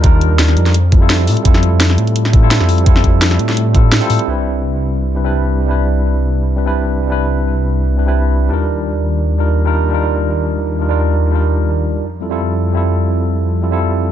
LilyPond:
<<
  \new Staff \with { instrumentName = "Tine electric piano" } { \time 4/4 \key f \lydian \tempo 4 = 170 <g d' ees' f' bes'>2 r8 <g c' e' f' a'>16 <g c' e' f' a'>16 r4 | <g c' e' f' a'>2~ <g c' e' f' a'>8 <g c' e' f' a'>16 <g c' e' f' a'>16 r4 | <g c' e' f' a'>2~ <g c' e' f' a'>8 <g c' e' f' a'>8. <g c' e' f' a'>8. | <g c' d' e' b'>2~ <g c' d' e' b'>8 <g c' d' e' b'>16 <g c' d' e' b'>16 r4 |
<g c' d' e' b'>2~ <g c' d' e' b'>8 <g c' d' e' b'>16 <g c' d' e' b'>16 r4 | <g c' d' e' b'>2~ <g c' d' e' b'>8 <g c' d' e' b'>16 <g c' d' e' b'>16 r4 | <g d' ees' f' bes'>2~ <g d' ees' f' bes'>8 <g d' ees' f' bes'>8. <g d' ees' f' bes'>8. | <g d' ees' f' bes'>2~ <g d' ees' f' bes'>8 <g d' ees' f' bes'>16 <g d' ees' f' bes'>16 r4 |
<g d' ees' f' bes'>2 r8 <g c' e' f' a'>16 <g c' e' f' a'>16 r4 | <g c' e' f' a'>2~ <g c' e' f' a'>8 <g c' e' f' a'>16 <g c' e' f' a'>16 r4 | }
  \new Staff \with { instrumentName = "Detuned saw bass" } { \clef bass \time 4/4 \key f \lydian ees,8. ees,8. f,2 a,16 r16 | f,8. f,8. a,4.~ a,16 f,8. | f,8. f,8. a,4.~ a,16 r16 a,16 r16 | c,1~ |
c,1~ | c,1 | ees,1~ | ees,1~ |
ees,2 f,2~ | f,1 | }
  \new DrumStaff \with { instrumentName = "Drums" } \drummode { \time 4/4 <hh bd>8 hh8 <hh sn>16 sn16 hh16 <hh sn>16 hh8 <hh bd>8 <hh sn>8 hho16 hh16 | <hh bd>16 sn16 hh8 <hh sn>16 sn16 hh16 hh16 hh16 sn16 <hh bd>8 <hh sn>16 sn16 hho16 hh16 | <hh bd>16 sn16 <hh bd>8 <hh sn>16 <hh sn>16 hh16 <hh sn>16 hh8 <hh bd>8 <hh sn>16 hh16 hho16 hh16 | r4 r4 r4 r4 |
r4 r4 r4 r4 | r4 r4 r4 r4 | r4 r4 r4 r4 | r4 r4 r4 r4 |
r4 r4 r4 r4 | r4 r4 r4 r4 | }
>>